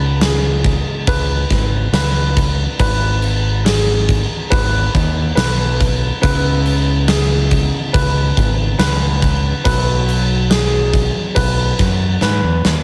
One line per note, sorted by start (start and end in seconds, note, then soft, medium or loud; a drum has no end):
0.00 0.82 C#2 loud
0.00 2.76 C#3 medium
0.00 9.61 G#3 medium
0.00 6.18 B3 medium
0.00 6.19 D#4 medium
0.00 2.75 E4 medium
0.00 0.22 B4 loud
0.21 1.07 G#4 medium
0.21 snare loud
0.21 crash medium
0.64 kick medium
0.64 crash medium
1.07 1.44 C#2 loud
1.07 1.92 B4 loud
1.07 kick loud
1.07 crash medium
1.50 1.87 G#1 medium
1.50 kick medium
1.50 snare soft
1.50 crash medium
1.92 2.66 C#2 loud
1.92 2.78 B4 medium
1.92 snare loud
1.92 crash medium
2.37 kick medium
2.37 crash medium
2.79 4.26 G#1 loud
2.79 3.65 B4 medium
2.79 kick loud
2.79 crash loud
3.22 crash medium
3.65 4.51 G#4 medium
3.65 snare loud
3.65 crash loud
4.09 kick medium
4.09 crash medium
4.50 4.88 G#1 loud
4.50 5.34 B4 loud
4.50 kick loud
4.50 crash loud
4.94 5.31 D#2 loud
4.94 kick medium
4.94 crash medium
5.35 6.10 B1 loud
5.35 6.20 B4 medium
5.35 snare loud
5.35 crash loud
5.81 kick medium
5.81 crash medium
6.21 7.69 C#2 loud
6.21 9.61 C#3 medium
6.21 12.83 B3 medium
6.21 9.62 D#4 medium
6.21 12.83 E4 medium
6.21 7.08 B4 loud
6.21 kick loud
6.21 crash medium
6.66 crash medium
7.08 7.94 G#4 medium
7.08 snare loud
7.08 crash loud
7.51 kick medium
7.51 crash medium
7.93 8.31 C#2 loud
7.93 8.77 B4 loud
7.93 kick loud
7.93 crash medium
8.37 8.74 G#1 medium
8.37 kick medium
8.37 crash medium
8.79 9.52 C#2 loud
8.79 9.63 B4 loud
8.79 snare loud
8.79 crash medium
9.22 kick medium
9.22 crash medium
9.64 11.11 B1 loud
9.64 12.83 F#3 medium
9.64 10.50 B4 medium
9.64 kick loud
9.64 crash medium
10.08 crash medium
10.50 11.36 G#4 medium
10.50 snare loud
10.50 crash loud
10.93 kick medium
10.93 crash medium
11.35 11.73 B1 loud
11.35 12.21 B4 medium
11.35 kick loud
11.35 crash loud
11.79 12.16 F#2 medium
11.79 kick medium
11.79 snare soft
11.79 crash medium
12.21 12.40 G#2 loud
12.21 12.83 B4 medium
12.21 snare medium
12.44 12.63 E2 medium
12.65 12.83 D#2 medium
12.65 snare loud